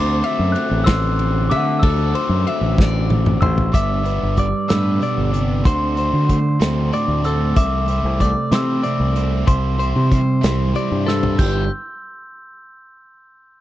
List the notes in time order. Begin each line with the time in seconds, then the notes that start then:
Already playing: D2 D3 A3 C4 F#4 C5 D6
0.24 E5, ride
0.39 F#2
0.52 F#6, ride
0.71 A1
0.84 C5 E6, kick, snare, ride
1.19 ride
1.50 D3 E5 D6, ride
1.79 D2 D3 A4 E6, kick, ride
1.84 A3 C4 F#4
2.15 C5, ride
2.29 F#2
2.47 E5, ride
2.61 A1
2.78 D5, kick, snare
3.10 high tom
3.26 mid tom
3.41 A1 C5 E6, mid tom
3.58 floor tom
3.72 G1 G2 D3 G3 B3 D4 E5 D6, kick, closed hi-hat
4.03 D3 G3 B3 D4 B4, closed hi-hat
4.23 G1
4.37 G3 D5 D6, kick, closed hi-hat
4.68 G2 A2 D3 G3 B3 D4 B4 E6, snare, closed hi-hat
4.99 B2 D3 G3 B3 D4 D5, closed hi-hat
5.18 G1
5.32 C3 D3 G3 B3 D4, closed hi-hat
5.63 D2 D3 A3 C4 F#4 C5 C6, kick, closed hi-hat
5.96 D3 A3 C4 F#4 C5, closed hi-hat
6.13 D3
6.29 A3 C5, kick, closed hi-hat
6.60 D2 D3 A3 C4 F#4, snare, closed hi-hat
6.91 A2 D3 A3 C4 F#4 D5 D6, closed hi-hat
7.08 D2
7.23 D3 A3 C4 F#4 A4 C5 E6, closed hi-hat
7.56 C2 C3 E3 A3 C4 E4 E5 D6, kick, closed hi-hat
7.88 E3 A3 C4 E4 C5, closed hi-hat
8.04 C2
8.20 A3 D5 D6, kick, closed hi-hat
8.51 C3 E3 A3 C4 E4 C5 E6, snare, closed hi-hat
8.83 C3 E3 A3 C4 E4 D5, closed hi-hat
9.00 C2
9.15 E3 A3 C4 E4 C5, closed hi-hat
9.46 C2 C3 E3 G3 C4 E4 C5 C6, kick, closed hi-hat
9.78 E3 G3 C4 E4 C5, closed hi-hat
9.96 C3
10.11 G3 C5, kick, closed hi-hat
10.41 C2 E3 G3 C4 E4, snare, closed hi-hat
10.74 E3 G3 C4 E4 D5, closed hi-hat
10.91 G2
11.05 E3 G3 C4 E4 A4 C5 E6, snare
11.23 floor tom
11.36 G1 G2 D3 G3 B3 D4 E4 G4 G6, kick, crash
11.40 G4 B4